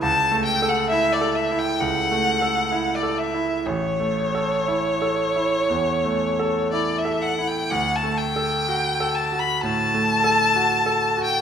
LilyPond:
<<
  \new Staff \with { instrumentName = "Violin" } { \time 4/4 \key a \mixolydian \tempo 4 = 63 a''8 g''16 fis''16 e''16 d''16 e''16 g''16 fis''4~ fis''16 d''16 e''8 | cis''2. d''16 e''16 fis''16 g''16 | fis''16 a''16 g''4 a''16 b''16 a''4.~ a''16 g''16 | }
  \new Staff \with { instrumentName = "Grand piano" } { \time 4/4 \key a \mixolydian \tuplet 3/2 { cis,8 a8 a'8 e'8 a'8 e'8 cis,8 a8 a'8 e'8 a'8 e'8 } | \tuplet 3/2 { a,,8 a8 a'8 e'8 a'8 e'8 e,8 a8 a'8 e'8 a'8 e'8 } | \tuplet 3/2 { d,8 a8 a'8 fis'8 a'8 fis'8 a,8 a8 a'8 fis'8 a'8 fis'8 } | }
>>